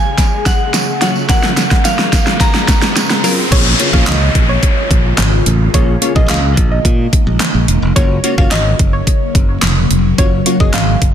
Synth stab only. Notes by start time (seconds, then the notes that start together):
1.01 F#3 C#4 F4 C#5
1.29 F3 F#3 C#4 A#4
3.24 F#3 C#4 F4 A#4
3.51 A#3 C#4 F4 G#4 C#5
3.79 A#3 C#4 F4 G#4 C#5
3.93 A#3 C#4 F4 G#4 C#5
5.74 A#3 C#4 F4 G#4 C#5
6.01 A#3 C#4 F4 G#4 C#5
6.15 A#3 C#4 F4 G#4 D#5
7.96 A#3 C#4 F4 F#4 C#5
8.24 A#3 C#4 F4 F#4 C#5
8.38 A#3 C#4 F4 F#4 C#5
10.18 A#3 C#4 F4 F#4 C#5
10.46 A#3 C#4 F4 F#4 C#5
10.60 A#3 C#4 F#4 G#4